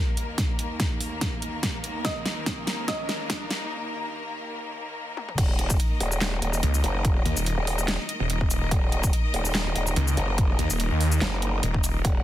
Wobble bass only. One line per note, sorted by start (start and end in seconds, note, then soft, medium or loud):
5.38 5.78 D#1 loud
6.00 6.41 D#1 loud
6.42 6.61 D#1 loud
6.84 7.24 F#1 loud
7.58 7.98 D#1 loud
8.71 9.12 D#1 loud
9.34 9.74 D#1 loud
9.76 9.95 D#1 loud
10.17 10.57 F#1 loud
11.21 11.62 F#1 loud
12.05 12.23 D#1 loud